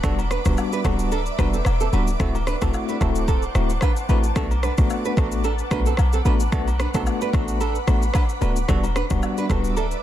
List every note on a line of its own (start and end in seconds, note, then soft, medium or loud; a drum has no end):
0.00 0.38 E1 loud
0.00 0.19 G3 medium
0.00 0.19 B3 medium
0.00 0.19 D4 medium
0.00 0.12 A4 medium
0.00 2.16 B4 medium
0.00 2.18 D5 medium
0.00 2.18 E5 medium
0.00 8.65 D6 medium
0.00 kick loud
0.00 cross-stick medium
0.00 shaker medium
0.04 0.13 D4 medium
0.04 0.19 F#4 loud
0.19 high agogo medium
0.19 shaker medium
0.31 0.40 D4 medium
0.31 0.39 B4 medium
0.31 cross-stick medium
0.31 shaker medium
0.45 0.56 D1 medium
0.45 0.82 G3 medium
0.45 0.82 B3 medium
0.45 0.82 D4 medium
0.45 0.82 F#4 medium
0.45 kick medium
0.45 cross-stick medium
0.45 high agogo medium
0.45 shaker medium
0.57 low woodblock medium
0.57 shaker medium
0.72 0.80 D4 medium
0.72 0.79 B4 medium
0.72 shaker soft
0.85 1.30 D1 medium
0.85 1.10 G3 medium
0.85 1.10 B3 medium
0.85 0.93 C4 medium
0.85 1.10 D4 medium
0.85 1.10 F#4 medium
0.85 0.93 A4 medium
0.85 kick medium
0.85 cross-stick loud
0.85 high agogo medium
0.85 shaker medium
0.99 shaker loud
1.12 1.21 D4 medium
1.12 1.20 A4 medium
1.12 high agogo medium
1.12 shaker medium
1.26 shaker soft
1.38 1.61 E1 loud
1.38 1.54 G3 medium
1.38 1.54 B3 medium
1.38 1.54 D4 medium
1.38 1.48 D4 medium
1.38 1.54 F#4 medium
1.38 1.47 B4 medium
1.38 kick medium
1.38 cross-stick loud
1.38 high agogo medium
1.38 shaker medium
1.54 1.61 C4 medium
1.54 1.60 A4 medium
1.54 shaker medium
1.65 1.88 E1 medium
1.65 cross-stick medium
1.65 high agogo medium
1.65 low woodblock medium
1.65 shaker medium
1.80 1.88 C4 medium
1.80 1.87 A4 medium
1.80 shaker medium
1.93 2.15 D1 medium
1.93 2.08 G3 medium
1.93 2.08 B3 medium
1.93 2.08 D4 medium
1.93 2.02 D4 medium
1.93 2.08 F#4 medium
1.93 2.01 B4 medium
1.93 high agogo medium
1.93 shaker soft
2.07 shaker medium
2.20 2.55 D1 loud
2.20 2.35 A3 medium
2.20 2.35 C4 medium
2.20 2.29 C4 medium
2.20 2.35 E4 medium
2.20 2.35 F#4 medium
2.20 2.28 A4 medium
2.20 4.34 C5 medium
2.20 4.34 F#5 medium
2.20 6.48 A5 medium
2.20 kick loud
2.20 cross-stick medium
2.20 shaker medium
2.35 high agogo medium
2.35 shaker medium
2.47 2.56 D4 medium
2.47 2.55 B4 medium
2.47 cross-stick medium
2.47 shaker medium
2.61 2.72 E1 loud
2.61 2.98 A3 medium
2.61 2.98 C4 medium
2.61 2.69 C4 medium
2.61 2.98 E4 medium
2.61 2.98 F#4 medium
2.61 2.68 A4 medium
2.61 kick medium
2.61 cross-stick medium
2.61 high agogo medium
2.61 shaker medium
2.74 low woodblock medium
2.74 shaker medium
2.89 2.96 D4 medium
2.89 2.95 B4 medium
2.89 shaker medium
3.01 3.46 D1 medium
3.01 3.26 A3 medium
3.01 3.26 C4 medium
3.01 3.10 C4 medium
3.01 3.26 E4 medium
3.01 3.26 F#4 medium
3.01 3.09 A4 medium
3.01 kick medium
3.01 cross-stick medium
3.01 high agogo medium
3.01 shaker medium
3.15 shaker loud
3.28 3.44 C4 medium
3.28 3.43 A4 medium
3.28 kick medium
3.28 high agogo medium
3.28 shaker medium
3.42 shaker soft
3.55 3.77 D1 medium
3.55 3.70 A3 medium
3.55 3.70 C4 medium
3.55 3.70 E4 medium
3.55 3.70 F#4 medium
3.55 cross-stick loud
3.55 high agogo medium
3.55 shaker medium
3.70 shaker medium
3.81 3.91 D4 medium
3.81 3.90 B4 medium
3.81 kick medium
3.81 cross-stick medium
3.81 high agogo medium
3.81 low woodblock medium
3.81 shaker medium
3.96 shaker medium
4.09 4.31 A1 medium
4.09 4.24 A3 medium
4.09 4.24 C4 medium
4.09 4.18 D4 medium
4.09 4.25 E4 medium
4.09 4.25 F#4 medium
4.09 4.17 B4 medium
4.09 high agogo medium
4.09 shaker soft
4.24 shaker medium
4.36 4.71 B1 loud
4.36 4.51 A3 medium
4.36 4.51 B3 medium
4.36 4.52 D4 medium
4.36 4.45 D4 medium
4.36 4.52 F#4 medium
4.36 4.44 A4 medium
4.36 8.65 B4 medium
4.36 8.65 F#5 medium
4.36 kick loud
4.36 cross-stick medium
4.36 shaker medium
4.51 high agogo medium
4.51 shaker medium
4.63 4.72 D4 medium
4.63 4.71 B4 medium
4.63 cross-stick medium
4.63 shaker medium
4.78 4.88 A1 medium
4.78 5.14 A3 medium
4.78 5.14 B3 medium
4.78 5.14 D4 medium
4.78 5.14 F#4 medium
4.78 kick medium
4.78 cross-stick medium
4.78 high agogo medium
4.78 shaker medium
4.90 low woodblock medium
4.90 shaker medium
5.05 5.13 D4 medium
5.05 5.12 B4 medium
5.05 shaker medium
5.17 5.62 A1 medium
5.17 5.42 A3 medium
5.17 5.42 B3 medium
5.17 5.26 C4 medium
5.17 5.42 D4 medium
5.17 5.43 F#4 medium
5.17 5.26 A4 medium
5.17 kick medium
5.17 cross-stick loud
5.17 high agogo medium
5.17 shaker medium
5.32 shaker loud
5.44 5.53 D4 medium
5.44 5.53 A4 medium
5.44 high agogo medium
5.44 shaker medium
5.59 shaker soft
5.71 5.94 B1 medium
5.71 5.86 A3 medium
5.71 5.87 B3 medium
5.71 5.87 D4 medium
5.71 5.80 D4 medium
5.71 5.87 F#4 medium
5.71 5.79 B4 medium
5.71 kick medium
5.71 cross-stick medium
5.71 high agogo medium
5.71 shaker medium
5.86 5.94 C4 medium
5.86 5.93 A4 medium
5.86 shaker medium
5.97 6.21 B1 medium
5.97 cross-stick medium
5.97 high agogo medium
5.97 low woodblock medium
5.97 shaker medium
6.13 6.20 C4 medium
6.13 6.20 A4 medium
6.13 shaker medium
6.25 6.48 A1 medium
6.25 6.41 A3 medium
6.25 6.41 B3 medium
6.25 6.41 D4 medium
6.25 6.34 D4 medium
6.25 6.41 F#4 medium
6.25 6.34 B4 medium
6.25 high agogo medium
6.25 shaker soft
6.40 shaker medium
6.52 6.87 B1 loud
6.52 6.68 A3 medium
6.52 6.68 B3 medium
6.52 6.68 D4 medium
6.52 6.61 D4 medium
6.52 6.68 F#4 loud
6.52 6.61 A4 medium
6.52 8.66 B5 medium
6.52 kick loud
6.52 cross-stick medium
6.52 shaker medium
6.68 high agogo medium
6.68 shaker medium
6.80 6.88 D4 medium
6.80 6.88 B4 medium
6.80 cross-stick medium
6.80 shaker medium
6.94 7.04 B1 medium
6.94 7.30 A3 medium
6.94 7.30 B3 medium
6.94 7.02 C4 medium
6.94 7.31 D4 medium
6.94 7.31 F#4 medium
6.94 7.01 A4 medium
6.94 kick loud
6.94 cross-stick medium
6.94 high agogo medium
6.94 shaker medium
7.06 low woodblock medium
7.06 shaker medium
7.21 7.29 D4 medium
7.21 7.28 B4 medium
7.21 shaker medium
7.33 7.78 A1 medium
7.33 7.58 A3 medium
7.33 7.58 B3 medium
7.33 7.42 C4 medium
7.33 7.59 D4 medium
7.33 7.59 F#4 medium
7.33 7.42 A4 medium
7.33 kick medium
7.33 cross-stick loud
7.33 high agogo medium
7.33 shaker medium
7.48 shaker loud
7.61 7.76 D4 medium
7.61 7.76 A4 medium
7.61 high agogo medium
7.61 shaker medium
7.75 shaker soft
7.87 8.10 A1 medium
7.87 8.03 A3 medium
7.87 8.03 B3 medium
7.87 8.03 D4 medium
7.87 8.03 F#4 medium
7.87 cross-stick loud
7.87 high agogo medium
7.87 shaker medium
8.02 shaker medium
8.14 8.23 D4 medium
8.14 8.23 B4 medium
8.14 kick loud
8.14 cross-stick loud
8.14 high agogo medium
8.14 low woodblock medium
8.14 shaker medium
8.29 shaker medium
8.41 8.64 D1 medium
8.41 8.57 A3 medium
8.41 8.57 B3 medium
8.41 8.57 D4 medium
8.41 8.50 D4 medium
8.41 8.57 F#4 medium
8.41 8.50 B4 medium
8.41 high agogo medium
8.41 shaker soft
8.56 shaker medium
8.68 9.03 E1 loud
8.68 8.84 G3 medium
8.68 8.84 B3 medium
8.68 8.84 D4 medium
8.68 8.77 D4 medium
8.68 8.84 F#4 loud
8.68 8.77 A4 medium
8.68 10.03 B4 medium
8.68 10.03 D5 medium
8.68 10.03 E5 medium
8.68 10.03 D6 medium
8.68 kick loud
8.68 cross-stick medium
8.68 shaker medium
8.84 high agogo medium
8.84 shaker medium
8.96 9.05 D4 medium
8.96 9.04 B4 medium
8.96 cross-stick loud
8.96 shaker medium
9.10 9.21 D1 medium
9.10 9.47 G3 medium
9.10 9.47 B3 medium
9.10 9.47 D4 medium
9.10 9.47 F#4 medium
9.10 kick loud
9.10 cross-stick medium
9.10 high agogo medium
9.10 shaker medium
9.22 low woodblock medium
9.22 shaker medium
9.38 9.45 D4 medium
9.38 9.45 B4 medium
9.38 shaker medium
9.49 9.95 D1 medium
9.49 9.75 G3 medium
9.49 9.75 B3 medium
9.49 9.59 C4 medium
9.49 9.75 D4 medium
9.49 9.75 F#4 medium
9.49 9.58 A4 medium
9.49 kick medium
9.49 cross-stick medium
9.49 high agogo medium
9.49 shaker medium
9.64 shaker loud
9.77 9.86 D4 medium
9.77 9.85 A4 medium
9.77 high agogo medium
9.77 shaker medium
9.91 shaker soft